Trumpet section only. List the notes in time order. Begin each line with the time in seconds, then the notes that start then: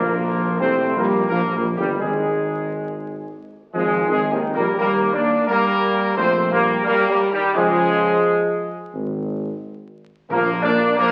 Already playing: A#4
0.61 C5
0.96 A#4
1.29 A#4
1.54 A#4
1.77 G4
2.00 G#4
3.75 G#4
4.11 G#4
4.32 D#4
4.55 A#4
4.78 A#4
5.12 D5
5.47 A#4
6.17 C5
6.51 A#4
6.87 A#4
7.10 A#4
7.32 G4
7.55 G#4
10.31 A#4
10.65 D5
10.99 A#4